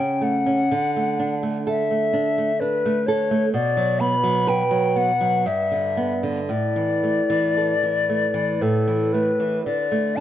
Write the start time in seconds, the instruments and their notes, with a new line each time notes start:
Already playing: nylon-string guitar C#3 C#4, flute G5
0.21 nylon-string guitar A3, flute F#5
0.46 nylon-string guitar C#4
0.71 nylon-string guitar D3
0.96 nylon-string guitar A3
1.19 nylon-string guitar D4
1.43 nylon-string guitar A3
1.67 nylon-string guitar A4, flute E5
1.91 nylon-string guitar A3
2.13 nylon-string guitar D4
2.38 nylon-string guitar A3
2.60 nylon-string guitar D4, flute B4
2.85 nylon-string guitar A3
3.06 nylon-string guitar A4, flute C#5
3.31 nylon-string guitar A3
3.53 nylon-string guitar B2, flute D5
3.77 nylon-string guitar F#3
4.00 nylon-string guitar B3, flute B5
4.24 nylon-string guitar F#3
4.47 nylon-string guitar B4, flute G5
4.71 nylon-string guitar F#3
4.96 nylon-string guitar B3, flute F#5
5.21 nylon-string guitar F#3
5.46 nylon-string guitar G2, flute E5
5.72 nylon-string guitar D3
5.97 nylon-string guitar B3
6.23 nylon-string guitar D3
6.49 nylon-string guitar A2, flute D5
6.76 nylon-string guitar E3
7.03 nylon-string guitar A3
7.30 nylon-string guitar E3
7.57 nylon-string guitar A4
7.83 nylon-string guitar E3
8.09 nylon-string guitar A3
8.34 nylon-string guitar E3
8.61 nylon-string guitar A2, flute A4
8.88 nylon-string guitar E3
9.13 nylon-string guitar A3, flute B4
9.40 nylon-string guitar E3
9.65 nylon-string guitar D3, flute D5
9.92 nylon-string guitar A3
10.16 nylon-string guitar D4, flute A5